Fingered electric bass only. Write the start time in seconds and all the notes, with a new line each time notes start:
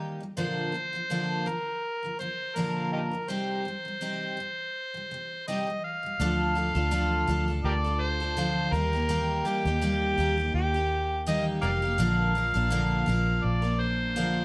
6.20 D2
6.75 D2
7.28 D2
7.64 D2
8.72 D#2
9.65 D#2
10.18 D#2
10.54 D#2
11.63 F1
11.99 A#1
12.55 A#1
13.08 A#1
13.44 A#1